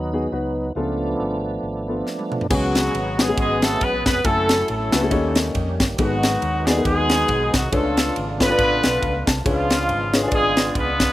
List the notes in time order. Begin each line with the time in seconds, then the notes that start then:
Already playing: D#2 F#3 B3 D#4
0.13 B3 D#4 F#4 G#4
0.32 C#2 B3 D#4 F#4 B4
0.75 C#2 C#3 F3 A3 B3 D4 F4 A4
1.20 G#1
1.63 G#1
1.88 B3 D4 F4 A4
2.07 snare
2.19 high tom
2.32 mid tom
2.41 floor tom
2.50 C#2 C#3 F#3 G#3 B3 C#4 F#4 G#4, kick, crash
2.75 snare, ride
2.95 G#1, ride
3.18 G#3 B3 C#4 F#4 G#4 B4, snare, ride
3.28 G#3 B3 C#4 F#4 G#4
3.37 G#1 G#3 B3 G#4, kick, ride
3.62 A3 A4, snare, ride
3.81 B1 B3 B4, kick, ride
4.06 F1 B3 B4, kick, snare, ride
4.24 F#1 F#3 A3 C#4 E4 F#4 G4 A4 G#5, kick, ride
4.31 A4
4.49 snare, ride
4.68 A1 A3 C#4 E4 A4, ride
4.92 C#2 A3 C#4 E4 F#4 B4, snare, ride
5.02 A3 C#4 E4 F#4 G#4
5.10 D#2 D#3 G3 A#3 C#4 F#4 G4 C#5 D#5, kick, ride
5.17 G4
5.35 snare, ride
5.55 F2, kick, ride
5.80 G1, kick, snare, ride
5.98 G#1 G#2 D#3 F#3 G#3 B3 D#4 F#4 G#4 A4, kick, ride
6.04 B4
6.23 snare, ride
6.42 D#2, ride
6.66 G#3 B3 D#4 F#4 G#4 D5, snare, ride
6.76 B3 D#4 F#4 G#4 A#4
6.82 D#2 G#3 G#4 B4, kick, ride
6.87 B3 D#4
7.09 snare, ride
7.28 B1, kick, ride
7.54 C2 F#3 F#4, kick, snare, ride
7.72 C#2 C#3 A3 B3 D4 F4 A4 B4 C#5, kick, ride
7.97 snare, ride
8.16 G#1, ride
8.39 B3 D4 F4 A4 B4 C#5, kick, snare, ride
8.49 D4 F4 A4 B4 D5
8.58 A1, kick, ride
8.83 B1, snare, ride
9.02 C#2 F5, kick, ride
9.27 C2 A5, kick, snare, ride
9.44 C#2 C#3 F3 G#3 B3 D4 E4 F4 G#4 B4 C#5, kick, ride
9.50 F4
9.70 snare, ride
9.89 G#1, ride
10.13 G#3 D4 F4 G#4 B4 C#5, snare, ride
10.22 D4 F4 G#4 B4 C#5
10.28 G#1 D5, kick, ride
10.32 G#3 B3 F4 G#4
10.57 snare, ride
10.75 C#2 B3 D4 F4 B4, kick, ride
11.00 kick, snare, ride